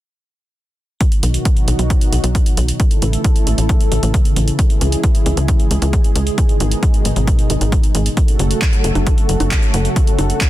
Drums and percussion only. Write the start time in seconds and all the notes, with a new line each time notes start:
1.01 kick, closed hi-hat
1.12 closed hi-hat
1.23 closed hi-hat
1.34 closed hi-hat
1.45 kick, closed hi-hat
1.57 closed hi-hat
1.68 closed hi-hat
1.79 closed hi-hat
1.90 kick, closed hi-hat
2.01 closed hi-hat
2.12 closed hi-hat
2.24 closed hi-hat
2.35 kick, closed hi-hat
2.46 closed hi-hat
2.57 closed hi-hat
2.68 closed hi-hat
2.80 kick, closed hi-hat
2.91 closed hi-hat
3.02 closed hi-hat
3.13 closed hi-hat
3.24 kick, closed hi-hat
3.36 closed hi-hat
3.47 closed hi-hat
3.58 closed hi-hat
3.69 kick, closed hi-hat
3.80 closed hi-hat
3.92 closed hi-hat
4.03 closed hi-hat
4.14 kick, closed hi-hat
4.25 closed hi-hat
4.36 closed hi-hat
4.48 closed hi-hat
4.59 kick, closed hi-hat
4.70 closed hi-hat
4.81 closed hi-hat
4.92 closed hi-hat
5.04 kick, closed hi-hat
5.15 closed hi-hat
5.26 closed hi-hat
5.37 closed hi-hat
5.48 kick, closed hi-hat
5.60 closed hi-hat
5.71 closed hi-hat
5.82 closed hi-hat
5.93 kick, closed hi-hat
6.04 closed hi-hat
6.16 closed hi-hat
6.27 closed hi-hat
6.38 kick, closed hi-hat
6.49 closed hi-hat
6.60 closed hi-hat
6.72 closed hi-hat
6.83 kick, closed hi-hat
6.94 closed hi-hat
7.05 closed hi-hat
7.16 closed hi-hat
7.27 kick, closed hi-hat
7.39 closed hi-hat
7.50 closed hi-hat
7.61 closed hi-hat
7.72 kick, closed hi-hat
7.83 closed hi-hat
7.95 closed hi-hat
8.06 closed hi-hat
8.17 kick, closed hi-hat
8.28 closed hi-hat
8.39 closed hi-hat
8.51 closed hi-hat
8.62 kick, clap, closed hi-hat
8.73 closed hi-hat
8.84 closed hi-hat
8.95 closed hi-hat, high conga
9.07 kick, closed hi-hat
9.18 closed hi-hat
9.29 closed hi-hat
9.40 closed hi-hat, high conga
9.51 kick, clap, closed hi-hat
9.63 closed hi-hat
9.74 closed hi-hat
9.85 closed hi-hat
9.96 kick, closed hi-hat
10.07 closed hi-hat
10.19 closed hi-hat, high conga
10.30 closed hi-hat
10.41 kick, clap, closed hi-hat